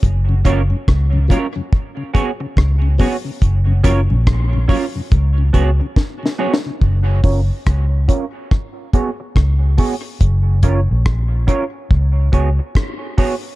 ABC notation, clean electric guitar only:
X:1
M:4/4
L:1/8
Q:"Swing 16ths" 1/4=71
K:F#
V:1 name="Clean electric guitar"
z [CEAc] z [CEAc] z [B,FGc] z [B,FGc] | z [CEAc] z [CEAc] z [B,FGc] z [B,FGc] | z [CEAc] z [CEAc] z [B,FGc] z [B,FGc] | z [CEAc] z [CEAc] z [B,FGc] z [B,FGc] |]